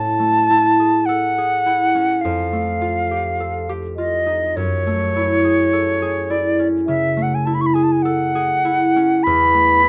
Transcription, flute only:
0.00 1.07 A5 loud
1.06 2.23 F#5 loud
2.21 3.72 F5 medium
3.96 4.58 D#5 medium
4.56 6.32 C#5 loud
6.31 6.67 D5 medium
6.87 7.24 E5 loud
7.22 7.36 F#5 medium
7.35 7.47 G#5 medium
7.46 7.56 A5 medium
7.54 7.63 B5 medium
7.61 7.68 C#6 medium
7.66 7.76 B5 medium
7.74 7.85 G#5 medium
7.83 7.93 A5 medium
7.92 8.04 G#5 medium
8.02 9.25 F#5 loud
9.23 9.89 B5 loud

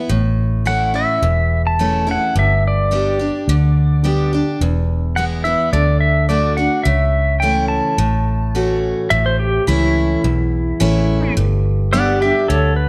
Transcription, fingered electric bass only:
0.10 1.04 A1 medium
1.22 2.16 E1 medium
2.35 3.29 G1 medium
3.48 4.42 D2 medium
4.61 5.54 E1 medium
5.73 6.67 D2 medium
6.85 7.79 C#2 medium
7.98 8.92 A1 medium
9.11 9.58 A1 medium
9.68 10.15 C#2 medium
10.24 10.72 B1 medium
10.81 11.28 A1 medium
11.37 12.31 G1 medium
12.50 12.89 D2 medium

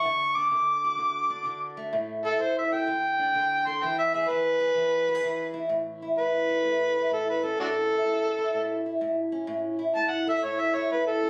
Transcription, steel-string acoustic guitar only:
0.05 0.50 D3 medium
0.37 1.29 D4 medium
0.51 0.97 D3 medium
0.84 1.94 F#4 medium
0.98 1.44 D3 medium
1.30 1.92 D4 medium
1.46 1.92 D3 medium
1.77 3.82 A3 medium
1.93 2.39 A2 medium
2.25 2.86 E4 medium
2.40 2.86 A2 medium
2.72 2.86 A4 medium
2.87 3.34 D3 medium
3.19 3.81 D4 medium
3.35 3.80 D3 medium
3.67 3.81 A4 medium
3.83 4.28 E3 medium
4.14 4.59 G#4 medium
4.30 4.74 E3 medium
4.60 5.08 G#4 medium
4.75 5.21 E3 medium
5.08 5.15 F#4 medium
5.15 5.71 G#4 medium
5.22 7.59 E3 medium
5.54 5.69 E4 medium
5.69 6.18 A2 medium
6.02 6.96 E4 medium
6.18 6.64 A2 medium
6.49 9.99 A4 medium
6.65 7.10 A2 medium
6.97 7.91 E4 soft
7.11 7.57 A2 medium
7.43 9.32 C#4 medium
7.58 8.05 A2 medium
7.92 8.38 E4 medium
8.05 8.53 A2 medium
8.38 8.85 E4 medium
8.54 9.01 A2 medium
8.86 9.78 E4 medium
9.01 9.47 A2 medium
9.32 11.23 C#4 medium
9.47 9.95 A2 medium
9.79 10.76 E4 medium
9.95 10.43 A2 medium
10.27 11.30 A4 medium
10.44 10.89 A2 medium
10.76 11.30 E4 medium
10.90 11.30 A2 medium
11.23 11.30 C#4 medium

